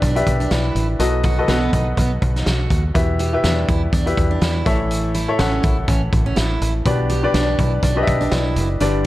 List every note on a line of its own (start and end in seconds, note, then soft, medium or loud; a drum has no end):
0.00 0.22 B1 loud
0.00 1.00 B2 medium
0.00 1.02 B3 medium
0.00 0.15 D4 medium
0.00 0.16 G4 medium
0.00 0.16 B4 medium
0.00 1.02 D5 medium
0.00 0.16 E5 medium
0.00 kick medium
0.00 closed hi-hat medium
0.15 0.84 D4 medium
0.15 0.84 G4 medium
0.15 0.84 B4 medium
0.15 0.85 E5 medium
0.15 closed hi-hat medium
0.27 0.47 B1 loud
0.27 kick medium
0.27 closed hi-hat medium
0.40 0.50 D4 medium
0.40 closed hi-hat soft
0.51 0.71 B1 loud
0.51 0.87 E4 medium
0.51 snare loud
0.51 closed hi-hat medium
0.75 0.95 A1 medium
0.75 closed hi-hat medium
0.99 1.40 B1 medium
0.99 1.69 B2 medium
0.99 1.69 F#3 medium
0.99 1.30 F#4 medium
0.99 1.30 A4 medium
0.99 1.30 B4 medium
0.99 1.30 D#5 medium
0.99 closed hi-hat medium
1.23 1.37 F#4 medium
1.23 kick medium
1.23 closed hi-hat medium
1.38 1.47 F#4 medium
1.38 1.47 A4 medium
1.38 1.47 B4 medium
1.38 1.47 D#5 medium
1.48 1.68 B1 medium
1.48 1.72 B3 medium
1.48 2.28 F#4 medium
1.48 2.28 A4 medium
1.48 2.28 B4 medium
1.48 2.29 F#5 medium
1.48 snare loud
1.48 closed hi-hat medium
1.73 1.93 B1 medium
1.73 1.86 D#4 medium
1.73 kick medium
1.73 closed hi-hat medium
1.97 2.17 B1 loud
1.97 2.10 B3 medium
1.97 kick medium
1.97 closed hi-hat medium
2.22 2.42 B1 loud
2.22 kick medium
2.22 closed hi-hat medium
2.36 2.46 D#4 medium
2.36 snare soft
2.36 closed hi-hat soft
2.46 2.66 B1 loud
2.46 2.82 F#4 medium
2.46 snare loud
2.46 closed hi-hat medium
2.70 2.90 D#2 medium
2.70 kick medium
2.70 closed hi-hat medium
2.94 3.35 E2 medium
2.94 3.64 B2 medium
2.94 3.25 E4 medium
2.94 3.25 G4 medium
2.94 3.25 B4 medium
2.94 3.26 E5 medium
2.94 kick loud
2.94 closed hi-hat medium
3.19 3.33 G4 medium
3.19 closed hi-hat medium
3.33 3.91 E4 medium
3.33 3.91 G4 medium
3.33 3.91 B4 medium
3.33 3.91 E5 medium
3.44 3.64 E2 loud
3.44 3.67 D4 medium
3.44 snare loud
3.44 closed hi-hat medium
3.69 3.89 E2 medium
3.69 3.81 E4 medium
3.69 kick loud
3.69 closed hi-hat medium
3.93 4.13 E2 loud
3.93 4.06 D4 medium
3.93 kick medium
3.93 closed hi-hat medium
4.06 4.64 E4 medium
4.06 4.66 G4 medium
4.06 4.66 B4 medium
4.06 4.65 E5 medium
4.06 closed hi-hat medium
4.17 4.37 E2 medium
4.17 kick medium
4.17 closed hi-hat medium
4.31 4.41 D4 medium
4.41 4.62 E2 loud
4.41 4.77 E4 medium
4.41 snare loud
4.41 closed hi-hat medium
4.66 5.26 A1 medium
4.66 5.35 A2 medium
4.66 5.35 E3 medium
4.66 5.15 E4 medium
4.66 5.15 A4 medium
4.66 5.15 C#5 medium
4.66 5.16 E5 loud
4.66 kick loud
4.66 closed hi-hat medium
4.91 closed hi-hat medium
5.14 5.28 E4 medium
5.14 closed hi-hat medium
5.28 5.37 E4 medium
5.28 5.37 A4 medium
5.28 5.37 C#5 medium
5.28 5.37 E5 medium
5.39 5.59 A1 loud
5.39 5.62 C#4 medium
5.39 6.19 E4 medium
5.39 6.19 A4 medium
5.39 6.19 C#5 medium
5.39 6.19 F#5 medium
5.39 snare loud
5.39 closed hi-hat medium
5.63 5.84 A1 medium
5.63 5.76 E4 medium
5.63 kick loud
5.63 closed hi-hat medium
5.88 6.08 A1 loud
5.88 6.01 C#4 medium
5.88 kick medium
5.88 closed hi-hat medium
6.13 6.32 A1 loud
6.13 kick medium
6.13 closed hi-hat medium
6.26 6.36 C#4 medium
6.36 6.57 A1 loud
6.36 6.72 E4 medium
6.36 snare loud
6.36 closed hi-hat loud
6.61 6.81 A1 medium
6.61 closed hi-hat medium
6.85 7.26 B1 medium
6.85 7.55 B2 medium
6.85 7.55 B3 medium
6.85 7.16 D4 medium
6.85 7.16 G4 medium
6.85 7.16 B4 medium
6.85 7.16 D5 medium
6.85 kick loud
6.85 closed hi-hat medium
7.09 7.23 G4 medium
7.09 closed hi-hat medium
7.23 7.81 D4 medium
7.23 7.81 G4 medium
7.23 7.81 B4 medium
7.23 7.82 D5 medium
7.34 7.54 B1 loud
7.34 7.57 D4 medium
7.34 snare medium
7.34 closed hi-hat medium
7.59 7.79 B1 loud
7.59 7.72 E4 medium
7.59 kick medium
7.59 closed hi-hat medium
7.83 8.03 B1 loud
7.83 7.96 D4 medium
7.83 kick medium
7.83 closed hi-hat medium
7.96 8.65 D4 medium
7.96 8.65 G4 medium
7.96 8.65 B4 medium
7.96 8.02 D#5 medium
8.03 8.68 E5 medium
8.07 8.27 B1 medium
8.07 kick medium
8.07 closed hi-hat medium
8.21 8.31 D4 medium
8.21 closed hi-hat soft
8.31 8.58 B1 loud
8.31 8.67 E4 medium
8.31 snare loud
8.31 closed hi-hat medium
8.56 8.76 F#1 medium
8.56 closed hi-hat medium
8.80 9.06 G1 medium
8.80 9.06 G2 medium
8.80 9.06 D3 medium
8.80 9.06 D4 medium
8.80 9.06 G4 medium
8.80 9.06 B4 medium
8.80 9.06 D5 medium
8.80 closed hi-hat medium